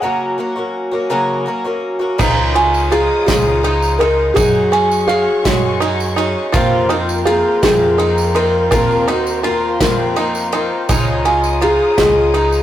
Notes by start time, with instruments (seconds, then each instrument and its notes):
0.01 twelve-string acoustic guitar F#2 C#3 F#3 A#3 C#4 F#4, upright piano F#5
0.38 twelve-string acoustic guitar F#3 A#3 C#4 F#4
0.56 twelve-string acoustic guitar F#3 A#3 C#4 F#4
0.91 twelve-string acoustic guitar F#3 A#3 C#4 F#4
1.10 twelve-string acoustic guitar F#2 C#3 F#3 A#3 C#4 F#4
1.46 twelve-string acoustic guitar F#3 A#3 C#4 F#4
1.64 twelve-string acoustic guitar F#3 A#3 C#4 F#4
1.99 twelve-string acoustic guitar F#3 A#3 C#4 F#4
2.18 upright bass C#2, twelve-string acoustic guitar C#3 F3 G#3 D#4 F4, five-string banjo D#4, string section C#5 F5 D#6, kick, crash, tambourine
2.54 twelve-string acoustic guitar G#3 D#4 F4, five-string banjo C#4, upright piano F4, ride
2.74 tambourine
2.91 twelve-string acoustic guitar F3 G#3 D#4 F4, five-string banjo F4, upright piano G#4, ride
3.26 upright bass C#2, twelve-string acoustic guitar C#3 F3 G#3 D#4 F4, upright piano G#4, kick, snare, ride, tambourine
3.63 twelve-string acoustic guitar F3 G#3 D#4 F4, five-string banjo D#4, ride
3.82 tambourine
3.99 twelve-string acoustic guitar G#3 D#4 F4, five-string banjo D#4, upright piano A#4, ride
4.34 upright bass F#2, twelve-string acoustic guitar F#3 G#3 C#4 F#4, five-string banjo D#4, string section F#4 G#4 C#6, upright piano G#4, kick, ride, tambourine
4.72 twelve-string acoustic guitar G#3 C#4 F#4, five-string banjo C#4, ride
4.91 tambourine
5.07 twelve-string acoustic guitar F#3 G#3 C#4 F#4, upright piano G#4, five-string banjo F5, ride
5.43 upright bass F#2, twelve-string acoustic guitar F#3 G#3 C#4 F#4, upright piano F#4, kick, snare, ride, tambourine
5.80 twelve-string acoustic guitar F#3 G#3 C#4 F#4, five-string banjo D#4, ride
6.00 tambourine
6.16 twelve-string acoustic guitar C#4 F#4, five-string banjo D#4, ride
6.21 twelve-string acoustic guitar G#3
6.52 upright bass F2, twelve-string acoustic guitar F2 C3 F3 A#3 C4 F4, five-string banjo F4, string section A#4 F5 C6, kick, ride, tambourine
6.89 twelve-string acoustic guitar F3 A#3 C4 F4, five-string banjo D#4, upright piano F4, ride
7.09 tambourine
7.25 twelve-string acoustic guitar F3 A#3 C4, five-string banjo F4, upright piano G#4, ride
7.30 twelve-string acoustic guitar F4
7.62 upright bass F2, twelve-string acoustic guitar F2 C3 F3 A#3 C4 F4, upright piano G#4, kick, snare, ride, tambourine
7.98 twelve-string acoustic guitar F3 A#3 C4 F4, five-string banjo D#4, ride
8.18 tambourine
8.35 twelve-string acoustic guitar F3 A#3 C4 F4, five-string banjo D#4, upright piano A#4, ride
8.71 upright bass D#2, twelve-string acoustic guitar F2 C3 F3 A#3 C4 F4, five-string banjo F4, upright piano A#4, kick, ride, tambourine
8.91 tambourine
9.08 twelve-string acoustic guitar A#3 C4, five-string banjo D#4, upright piano F#4, ride, tambourine
9.27 tambourine
9.43 twelve-string acoustic guitar F3 A#3 C4 F4, five-string banjo F4, upright piano F4, ride
9.80 upright bass F2, twelve-string acoustic guitar F2 C3 F3 A#3 C4 F4, upright piano F4, kick, snare, ride, tambourine
10.16 twelve-string acoustic guitar F3 A#3 C4 F4, five-string banjo D#4, ride
10.35 tambourine
10.52 twelve-string acoustic guitar F3 A#3 C4 F4, five-string banjo D#4, ride
10.89 upright bass C#2, twelve-string acoustic guitar C#3 F3 G#3 D#4 F4, five-string banjo D#4, string section C#5 F5 D#6, kick, ride, tambourine
11.25 twelve-string acoustic guitar G#3 D#4 F4, five-string banjo C#4, upright piano F4, ride
11.44 tambourine
11.61 twelve-string acoustic guitar F3 G#3 D#4 F4, five-string banjo F4, upright piano G#4, ride
11.98 upright bass C#2, twelve-string acoustic guitar C#3 F3 G#3 D#4 F4, upright piano G#4, kick, snare, ride, tambourine
12.34 twelve-string acoustic guitar F3 G#3 D#4 F4, five-string banjo D#4, ride
12.52 tambourine